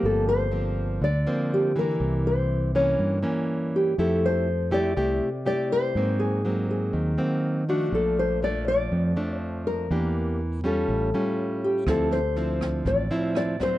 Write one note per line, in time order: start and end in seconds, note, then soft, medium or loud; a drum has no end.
0.00 0.98 G1 medium
0.00 0.99 G2 medium
0.00 0.49 F3 medium
0.00 0.49 A#3 medium
0.00 0.49 C4 medium
0.05 0.28 A4 medium
0.29 1.03 C5 medium
0.51 1.01 F3 medium
0.51 1.01 A#3 soft
0.51 1.02 C4 medium
1.01 1.25 D2 medium
1.01 1.98 D3 medium
1.01 1.49 D5 medium
1.27 1.72 F3 medium
1.27 1.72 A#3 medium
1.27 1.72 C4 medium
1.54 1.78 G4 medium
1.76 2.71 E3 medium
1.76 2.71 A#3 medium
1.76 2.27 A#4 loud
2.00 2.95 C2 medium
2.00 2.97 C3 soft
2.27 2.75 C5 medium
2.75 3.20 E3 medium
2.75 3.21 A#3 medium
2.75 3.21 C#4 medium
2.75 3.45 C#5 medium
2.99 3.95 G2 medium
2.99 3.22 G2 medium
3.23 3.93 E3 medium
3.23 3.94 A#3 medium
3.23 3.94 C#4 medium
3.76 4.00 G4 medium
3.98 4.93 F2 medium
3.98 4.94 F3 soft
3.98 4.47 A3 soft
3.98 4.48 E4 medium
3.98 4.48 G4 medium
3.98 4.24 A4 medium
4.26 4.70 C5 medium
4.71 4.92 A3 medium
4.71 4.93 E4 medium
4.71 4.93 G4 medium
4.71 5.46 D5 medium
4.96 5.20 C2 medium
4.96 5.93 C3 medium
4.96 5.28 A3 soft
4.96 5.29 E4 medium
4.96 5.29 G4 medium
5.46 5.93 A3 soft
5.46 5.94 E4 medium
5.46 5.94 G4 medium
5.46 5.72 D5 medium
5.72 6.22 C5 loud
5.95 6.90 G#2 medium
5.95 6.92 G#2 medium
5.95 6.41 F#3 medium
5.95 6.41 A#3 medium
5.95 6.42 C4 medium
6.20 6.69 G#4 medium
6.45 7.15 F#3 soft
6.45 7.15 A#3 soft
6.45 7.15 C4 medium
6.71 7.40 G#4 medium
6.93 7.16 D#2 medium
6.93 7.90 D#3 medium
7.18 7.63 F#3 medium
7.18 7.64 A#3 medium
7.18 7.64 C4 medium
7.69 8.41 F3 medium
7.69 8.42 A3 medium
7.69 8.42 D4 medium
7.69 7.94 F#4 medium
7.92 8.87 A#1 medium
7.92 8.89 A#2 medium
7.92 8.17 A4 medium
8.19 8.41 C5 medium
8.42 9.12 F3 medium
8.42 9.13 A3 medium
8.42 9.13 D4 soft
8.42 8.67 D5 medium
8.68 9.39 D5 medium
8.92 9.14 F2 medium
8.92 9.88 F2 medium
9.16 9.86 F3 medium
9.16 9.86 A3 medium
9.16 9.86 D4 medium
9.39 9.66 C5 medium
9.67 10.66 A#4 loud
9.90 10.85 E2 medium
9.90 10.63 E3 medium
9.90 10.40 A#3 medium
9.90 10.40 D4 soft
9.90 10.40 G4 medium
10.64 11.09 G3 medium
10.64 11.10 C#4 medium
10.64 11.10 F4 medium
10.64 11.67 A4 medium
10.88 11.11 A1 medium
10.88 11.85 A2 medium
11.14 11.84 G3 medium
11.14 11.84 C#4 medium
11.14 11.84 F4 medium
11.64 11.86 G4 medium
11.86 12.81 D2 medium
11.86 12.83 D3 medium
11.86 12.19 F3 soft
11.86 12.19 C4 medium
11.86 12.19 E4 medium
11.86 12.11 A4 medium
11.86 kick medium
11.86 cross-stick medium
11.86 snare soft
12.11 12.87 C5 medium
12.11 snare soft
12.36 13.07 F3 medium
12.36 13.07 C4 medium
12.36 13.07 E4 medium
12.36 snare soft
12.61 kick soft
12.61 cross-stick medium
12.61 snare soft
12.85 13.08 A1 medium
12.85 13.78 A2 soft
12.85 13.36 D5 medium
12.85 kick medium
12.85 snare soft
13.11 13.56 F3 medium
13.11 13.56 C4 medium
13.11 13.56 E4 medium
13.11 snare soft
13.35 13.61 D5 medium
13.35 cross-stick medium
13.35 snare soft
13.60 13.78 F#3 medium
13.60 13.78 C4 medium
13.60 13.78 C5 medium
13.60 kick soft
13.60 snare soft